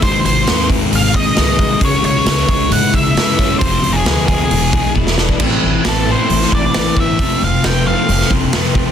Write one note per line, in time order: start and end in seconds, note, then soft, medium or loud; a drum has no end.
0.00 0.22 G#1 medium
0.00 1.58 G#2 medium
0.00 1.15 G#2 medium
0.00 1.58 D#3 medium
0.00 0.46 G#3 medium
0.00 0.24 C5 medium
0.00 kick medium
0.00 open hi-hat medium
0.05 1.58 G#3 medium
0.25 0.44 G#1 medium
0.25 0.68 C5 medium
0.25 open hi-hat soft
0.47 0.85 D#2 medium
0.47 1.13 C4 medium
0.47 snare loud
0.47 open hi-hat medium
0.69 1.57 D#4 medium
0.69 kick medium
0.69 open hi-hat soft
0.91 1.11 G#1 medium
0.91 1.35 G#4 medium
0.91 open hi-hat medium
0.95 1.15 F5 medium
1.14 1.33 D#2 medium
1.14 1.82 C4 medium
1.14 1.79 D#5 medium
1.14 kick medium
1.14 open hi-hat soft
1.36 1.75 C2 medium
1.36 2.71 G#4 medium
1.36 snare loud
1.36 open hi-hat medium
1.58 1.82 G#2 medium
1.58 1.80 D#3 medium
1.58 1.82 G#3 medium
1.58 1.82 D#4 medium
1.58 kick medium
1.58 open hi-hat soft
1.80 2.00 C#2 medium
1.80 3.37 C#3 medium
1.80 2.94 C#3 medium
1.80 3.37 G#3 medium
1.80 3.36 C#4 medium
1.80 kick medium
1.80 open hi-hat medium
1.85 2.04 C#5 medium
2.03 2.22 C#2 medium
2.03 2.74 C#5 medium
2.03 open hi-hat soft
2.25 2.45 C#2 medium
2.25 2.92 G#3 medium
2.25 snare loud
2.25 open hi-hat medium
2.48 2.67 C#2 medium
2.48 3.37 C#4 medium
2.48 kick medium
2.48 open hi-hat soft
2.71 2.90 G#2 medium
2.71 3.14 E4 medium
2.71 2.95 F#5 medium
2.71 open hi-hat medium
2.93 3.13 C#2 medium
2.93 3.61 G#3 medium
2.93 3.58 E5 loud
2.93 kick medium
2.93 open hi-hat soft
3.15 3.53 F#2 medium
3.15 3.61 E4 medium
3.15 snare loud
3.15 open hi-hat medium
3.37 3.61 C#3 medium
3.37 3.60 G#3 medium
3.37 3.59 C#4 medium
3.37 3.61 C#4 medium
3.37 kick medium
3.37 snare soft
3.37 open hi-hat soft
3.59 3.80 F1 medium
3.59 4.50 F2 medium
3.59 4.49 F2 medium
3.59 4.50 C3 loud
3.59 3.95 C5 medium
3.59 kick loud
3.59 open hi-hat medium
3.64 4.51 F3 medium
3.83 4.02 F1 medium
3.83 open hi-hat soft
3.93 4.27 G#4 medium
4.05 4.43 D2 medium
4.05 4.51 G#3 medium
4.05 snare loud
4.05 open hi-hat medium
4.28 4.51 C4 medium
4.28 4.91 G#4 medium
4.28 kick medium
4.28 open hi-hat soft
4.49 4.69 E1 medium
4.49 5.38 E2 medium
4.49 5.40 E2 medium
4.49 5.39 B2 medium
4.49 5.39 E3 medium
4.49 open hi-hat medium
4.73 4.92 B1 medium
4.73 5.41 G#3 medium
4.73 kick medium
4.73 open hi-hat soft
4.95 5.32 E1 medium
4.95 5.41 E4 medium
4.95 kick medium
5.07 snare medium
5.18 5.41 D4 medium
5.18 snare medium
5.29 kick medium
5.40 5.54 A1 medium
5.40 5.61 A2 medium
5.40 5.85 A2 medium
5.40 5.62 E3 medium
5.40 5.84 E3 medium
5.40 5.62 A3 medium
5.40 5.64 A3 medium
5.40 5.64 C4 medium
5.40 5.62 E4 medium
5.40 kick medium
5.40 crash medium
5.62 5.77 A1 medium
5.62 5.83 A2 medium
5.62 5.83 E3 medium
5.62 5.85 A3 soft
5.62 5.86 C4 medium
5.62 5.86 E4 medium
5.84 6.13 A1 medium
5.84 6.05 A2 medium
5.84 6.05 E3 medium
5.84 6.08 E3 medium
5.84 6.08 A3 medium
5.84 6.07 C4 medium
5.84 6.06 E4 medium
5.84 snare loud
5.84 open hi-hat medium
5.89 6.09 A4 medium
6.07 6.28 A2 medium
6.07 6.53 A2 medium
6.07 6.29 E3 medium
6.07 6.29 A3 medium
6.07 6.30 A3 medium
6.07 6.30 C4 medium
6.07 6.30 E4 medium
6.12 6.53 C5 medium
6.30 6.44 A1 medium
6.30 6.49 A2 medium
6.30 6.50 E3 medium
6.30 6.52 E3 medium
6.30 6.52 A3 medium
6.30 6.51 C4 medium
6.30 6.50 E4 medium
6.30 open hi-hat medium
6.42 snare soft
6.50 6.66 A1 medium
6.50 6.71 A2 medium
6.50 6.98 A2 medium
6.50 6.72 E3 medium
6.50 6.74 E3 medium
6.50 6.75 A3 medium
6.50 6.75 C4 medium
6.50 6.76 E4 medium
6.50 kick medium
6.55 6.97 D5 medium
6.74 6.89 A1 medium
6.74 6.95 A2 medium
6.74 7.18 E3 medium
6.74 6.95 E3 medium
6.74 6.98 A3 medium
6.74 6.96 C4 medium
6.74 6.95 E4 medium
6.74 snare loud
6.74 open hi-hat medium
6.97 7.11 G1 medium
6.97 7.17 A2 medium
6.97 7.18 E3 medium
6.97 7.20 A3 medium
6.97 7.18 C4 medium
6.97 7.18 E4 medium
6.97 7.42 E5 medium
6.97 kick medium
7.19 7.33 F1 medium
7.19 7.64 F2 medium
7.19 7.41 F2 medium
7.19 7.64 C3 medium
7.19 7.41 C3 medium
7.19 7.43 F3 medium
7.19 7.41 F3 medium
7.19 7.43 A3 medium
7.19 7.41 C4 medium
7.19 7.42 F4 loud
7.19 kick loud
7.19 open hi-hat soft
7.42 7.56 F1 medium
7.42 7.62 F2 medium
7.42 7.62 C3 medium
7.42 7.64 F3 medium
7.42 7.64 A3 medium
7.42 7.64 C4 medium
7.42 7.66 F4 medium
7.42 7.65 F5 medium
7.64 7.92 F1 medium
7.64 7.84 F2 medium
7.64 7.84 C3 medium
7.64 7.87 F3 medium
7.64 7.87 A3 medium
7.64 7.85 C4 medium
7.64 7.86 F4 medium
7.64 7.87 G5 medium
7.64 snare loud
7.64 open hi-hat medium
7.86 8.08 F2 medium
7.86 8.32 F2 medium
7.86 8.08 C3 medium
7.86 8.31 C3 medium
7.86 8.08 F3 medium
7.86 8.08 A3 medium
7.86 8.09 C4 medium
7.86 8.10 F4 medium
7.86 8.30 F5 medium
8.09 8.23 F1 medium
8.09 8.30 F2 medium
8.09 8.30 C3 medium
8.09 8.32 F3 medium
8.09 8.30 A3 medium
8.09 8.30 C4 medium
8.09 8.30 F4 medium
8.09 open hi-hat medium
8.21 snare soft
8.30 8.44 F1 medium
8.30 8.52 F2 medium
8.30 8.77 F2 medium
8.30 8.76 C3 medium
8.30 8.52 C3 medium
8.30 8.53 F3 medium
8.30 8.54 A3 medium
8.30 8.54 C4 medium
8.30 8.55 F4 medium
8.30 kick medium
8.53 8.67 F1 medium
8.53 8.74 F2 medium
8.53 8.74 C3 medium
8.53 8.77 F3 medium
8.53 8.75 A3 medium
8.53 8.75 C4 medium
8.53 8.75 F4 medium
8.53 snare loud
8.53 open hi-hat soft
8.75 8.89 E2 medium
8.75 8.92 F2 medium
8.75 8.92 C3 medium
8.75 8.92 F3 medium
8.75 8.92 A3 medium
8.75 8.92 C4 medium
8.75 8.92 F4 medium
8.75 kick medium